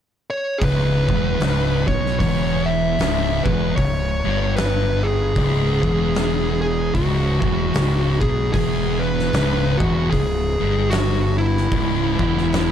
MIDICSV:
0, 0, Header, 1, 5, 480
1, 0, Start_track
1, 0, Key_signature, 4, "minor"
1, 0, Tempo, 793651
1, 379, Time_signature, 4, 2, 24, 8
1, 7692, End_track
2, 0, Start_track
2, 0, Title_t, "Lead electric guitar"
2, 0, Program_c, 0, 29
2, 183, Note_on_c, 0, 73, 88
2, 349, Note_off_c, 0, 73, 0
2, 353, Note_on_c, 0, 68, 72
2, 383, Note_off_c, 0, 68, 0
2, 383, Note_on_c, 0, 71, 83
2, 1119, Note_off_c, 0, 71, 0
2, 1134, Note_on_c, 0, 73, 83
2, 1319, Note_off_c, 0, 73, 0
2, 1327, Note_on_c, 0, 73, 101
2, 1608, Note_on_c, 0, 76, 102
2, 1623, Note_off_c, 0, 73, 0
2, 2077, Note_on_c, 0, 71, 83
2, 2106, Note_off_c, 0, 76, 0
2, 2272, Note_off_c, 0, 71, 0
2, 2274, Note_on_c, 0, 73, 98
2, 2757, Note_off_c, 0, 73, 0
2, 2760, Note_on_c, 0, 71, 82
2, 3044, Note_on_c, 0, 68, 88
2, 3058, Note_off_c, 0, 71, 0
2, 3993, Note_off_c, 0, 68, 0
2, 4000, Note_on_c, 0, 68, 81
2, 4188, Note_off_c, 0, 68, 0
2, 4202, Note_on_c, 0, 66, 102
2, 4958, Note_off_c, 0, 66, 0
2, 4960, Note_on_c, 0, 68, 79
2, 5148, Note_off_c, 0, 68, 0
2, 5155, Note_on_c, 0, 68, 92
2, 5438, Note_on_c, 0, 71, 93
2, 5456, Note_off_c, 0, 68, 0
2, 5912, Note_on_c, 0, 66, 86
2, 5942, Note_off_c, 0, 71, 0
2, 6109, Note_off_c, 0, 66, 0
2, 6112, Note_on_c, 0, 68, 105
2, 6579, Note_off_c, 0, 68, 0
2, 6592, Note_on_c, 0, 66, 83
2, 6879, Note_off_c, 0, 66, 0
2, 6882, Note_on_c, 0, 64, 87
2, 7692, Note_off_c, 0, 64, 0
2, 7692, End_track
3, 0, Start_track
3, 0, Title_t, "Distorted electric guitar"
3, 0, Program_c, 1, 30
3, 381, Note_on_c, 1, 37, 92
3, 655, Note_off_c, 1, 37, 0
3, 660, Note_on_c, 1, 40, 97
3, 850, Note_off_c, 1, 40, 0
3, 852, Note_on_c, 1, 37, 94
3, 1130, Note_off_c, 1, 37, 0
3, 1134, Note_on_c, 1, 47, 99
3, 1326, Note_off_c, 1, 47, 0
3, 1336, Note_on_c, 1, 40, 102
3, 1808, Note_off_c, 1, 40, 0
3, 1820, Note_on_c, 1, 37, 94
3, 2092, Note_off_c, 1, 37, 0
3, 2098, Note_on_c, 1, 40, 102
3, 2285, Note_off_c, 1, 40, 0
3, 2287, Note_on_c, 1, 37, 70
3, 2517, Note_off_c, 1, 37, 0
3, 2567, Note_on_c, 1, 43, 97
3, 3239, Note_off_c, 1, 43, 0
3, 3245, Note_on_c, 1, 37, 97
3, 3523, Note_off_c, 1, 37, 0
3, 3533, Note_on_c, 1, 40, 112
3, 4202, Note_off_c, 1, 40, 0
3, 4204, Note_on_c, 1, 37, 108
3, 4482, Note_off_c, 1, 37, 0
3, 4499, Note_on_c, 1, 40, 103
3, 4685, Note_off_c, 1, 40, 0
3, 4693, Note_on_c, 1, 37, 112
3, 4967, Note_off_c, 1, 37, 0
3, 4971, Note_on_c, 1, 47, 99
3, 5162, Note_off_c, 1, 47, 0
3, 5177, Note_on_c, 1, 40, 96
3, 5648, Note_off_c, 1, 40, 0
3, 5655, Note_on_c, 1, 37, 92
3, 5929, Note_off_c, 1, 37, 0
3, 5935, Note_on_c, 1, 40, 106
3, 6125, Note_off_c, 1, 40, 0
3, 6129, Note_on_c, 1, 37, 77
3, 6359, Note_off_c, 1, 37, 0
3, 6410, Note_on_c, 1, 43, 106
3, 7086, Note_off_c, 1, 43, 0
3, 7094, Note_on_c, 1, 37, 99
3, 7372, Note_off_c, 1, 37, 0
3, 7379, Note_on_c, 1, 40, 113
3, 7692, Note_off_c, 1, 40, 0
3, 7692, End_track
4, 0, Start_track
4, 0, Title_t, "Fingered electric bass"
4, 0, Program_c, 2, 33
4, 373, Note_on_c, 2, 25, 88
4, 640, Note_off_c, 2, 25, 0
4, 660, Note_on_c, 2, 28, 86
4, 842, Note_off_c, 2, 28, 0
4, 849, Note_on_c, 2, 25, 106
4, 1116, Note_off_c, 2, 25, 0
4, 1137, Note_on_c, 2, 35, 100
4, 1320, Note_off_c, 2, 35, 0
4, 1332, Note_on_c, 2, 28, 81
4, 1788, Note_off_c, 2, 28, 0
4, 1814, Note_on_c, 2, 25, 97
4, 2078, Note_off_c, 2, 25, 0
4, 2093, Note_on_c, 2, 28, 87
4, 2276, Note_off_c, 2, 28, 0
4, 2284, Note_on_c, 2, 25, 73
4, 2552, Note_off_c, 2, 25, 0
4, 2577, Note_on_c, 2, 31, 85
4, 3226, Note_off_c, 2, 31, 0
4, 3245, Note_on_c, 2, 25, 90
4, 3511, Note_off_c, 2, 25, 0
4, 3528, Note_on_c, 2, 28, 92
4, 4181, Note_off_c, 2, 28, 0
4, 4203, Note_on_c, 2, 25, 92
4, 4470, Note_off_c, 2, 25, 0
4, 4491, Note_on_c, 2, 28, 93
4, 4673, Note_off_c, 2, 28, 0
4, 4690, Note_on_c, 2, 25, 102
4, 4954, Note_off_c, 2, 25, 0
4, 4970, Note_on_c, 2, 35, 91
4, 5153, Note_off_c, 2, 35, 0
4, 5167, Note_on_c, 2, 28, 81
4, 5625, Note_off_c, 2, 28, 0
4, 5646, Note_on_c, 2, 25, 100
4, 5913, Note_off_c, 2, 25, 0
4, 5929, Note_on_c, 2, 28, 100
4, 6114, Note_off_c, 2, 28, 0
4, 6127, Note_on_c, 2, 25, 85
4, 6394, Note_off_c, 2, 25, 0
4, 6420, Note_on_c, 2, 31, 84
4, 7073, Note_off_c, 2, 31, 0
4, 7089, Note_on_c, 2, 25, 84
4, 7358, Note_off_c, 2, 25, 0
4, 7376, Note_on_c, 2, 28, 96
4, 7692, Note_off_c, 2, 28, 0
4, 7692, End_track
5, 0, Start_track
5, 0, Title_t, "Drums"
5, 371, Note_on_c, 9, 46, 55
5, 373, Note_on_c, 9, 36, 110
5, 431, Note_off_c, 9, 46, 0
5, 433, Note_off_c, 9, 36, 0
5, 657, Note_on_c, 9, 36, 93
5, 717, Note_off_c, 9, 36, 0
5, 849, Note_on_c, 9, 46, 61
5, 859, Note_on_c, 9, 38, 100
5, 909, Note_off_c, 9, 46, 0
5, 920, Note_off_c, 9, 38, 0
5, 1136, Note_on_c, 9, 36, 99
5, 1197, Note_off_c, 9, 36, 0
5, 1249, Note_on_c, 9, 38, 35
5, 1310, Note_off_c, 9, 38, 0
5, 1332, Note_on_c, 9, 36, 100
5, 1338, Note_on_c, 9, 46, 58
5, 1393, Note_off_c, 9, 36, 0
5, 1399, Note_off_c, 9, 46, 0
5, 1809, Note_on_c, 9, 46, 59
5, 1819, Note_on_c, 9, 38, 99
5, 1869, Note_off_c, 9, 46, 0
5, 1880, Note_off_c, 9, 38, 0
5, 2090, Note_on_c, 9, 36, 108
5, 2151, Note_off_c, 9, 36, 0
5, 2282, Note_on_c, 9, 46, 50
5, 2284, Note_on_c, 9, 36, 94
5, 2343, Note_off_c, 9, 46, 0
5, 2345, Note_off_c, 9, 36, 0
5, 2763, Note_on_c, 9, 46, 52
5, 2773, Note_on_c, 9, 38, 116
5, 2823, Note_off_c, 9, 46, 0
5, 2833, Note_off_c, 9, 38, 0
5, 3241, Note_on_c, 9, 46, 59
5, 3243, Note_on_c, 9, 36, 101
5, 3301, Note_off_c, 9, 46, 0
5, 3303, Note_off_c, 9, 36, 0
5, 3527, Note_on_c, 9, 36, 92
5, 3588, Note_off_c, 9, 36, 0
5, 3718, Note_on_c, 9, 46, 54
5, 3729, Note_on_c, 9, 38, 108
5, 3779, Note_off_c, 9, 46, 0
5, 3789, Note_off_c, 9, 38, 0
5, 4202, Note_on_c, 9, 36, 101
5, 4202, Note_on_c, 9, 46, 58
5, 4262, Note_off_c, 9, 46, 0
5, 4263, Note_off_c, 9, 36, 0
5, 4488, Note_on_c, 9, 36, 107
5, 4548, Note_off_c, 9, 36, 0
5, 4682, Note_on_c, 9, 46, 63
5, 4692, Note_on_c, 9, 38, 119
5, 4742, Note_off_c, 9, 46, 0
5, 4752, Note_off_c, 9, 38, 0
5, 4968, Note_on_c, 9, 36, 103
5, 5029, Note_off_c, 9, 36, 0
5, 5164, Note_on_c, 9, 36, 107
5, 5167, Note_on_c, 9, 46, 63
5, 5224, Note_off_c, 9, 36, 0
5, 5228, Note_off_c, 9, 46, 0
5, 5560, Note_on_c, 9, 38, 32
5, 5620, Note_off_c, 9, 38, 0
5, 5643, Note_on_c, 9, 46, 52
5, 5653, Note_on_c, 9, 38, 103
5, 5703, Note_off_c, 9, 46, 0
5, 5713, Note_off_c, 9, 38, 0
5, 5929, Note_on_c, 9, 36, 108
5, 5989, Note_off_c, 9, 36, 0
5, 6124, Note_on_c, 9, 36, 87
5, 6128, Note_on_c, 9, 46, 61
5, 6185, Note_off_c, 9, 36, 0
5, 6189, Note_off_c, 9, 46, 0
5, 6600, Note_on_c, 9, 46, 63
5, 6610, Note_on_c, 9, 38, 110
5, 6660, Note_off_c, 9, 46, 0
5, 6670, Note_off_c, 9, 38, 0
5, 7000, Note_on_c, 9, 38, 33
5, 7060, Note_off_c, 9, 38, 0
5, 7087, Note_on_c, 9, 36, 112
5, 7087, Note_on_c, 9, 46, 60
5, 7148, Note_off_c, 9, 36, 0
5, 7148, Note_off_c, 9, 46, 0
5, 7374, Note_on_c, 9, 36, 101
5, 7435, Note_off_c, 9, 36, 0
5, 7487, Note_on_c, 9, 38, 32
5, 7547, Note_off_c, 9, 38, 0
5, 7575, Note_on_c, 9, 46, 47
5, 7585, Note_on_c, 9, 38, 109
5, 7635, Note_off_c, 9, 46, 0
5, 7646, Note_off_c, 9, 38, 0
5, 7692, End_track
0, 0, End_of_file